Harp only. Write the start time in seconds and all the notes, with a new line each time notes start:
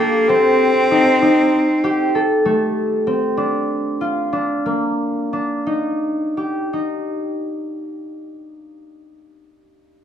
Already playing: D4 F4 G4
0.00 A4
0.29 C4
0.91 D#4
1.22 D#4
1.84 G4
2.15 A4
2.45 A3
3.07 C4
3.37 D4
4.01 F4
4.33 D4
4.66 A#3
5.33 D4
5.67 D#4
6.37 G4
6.73 D#4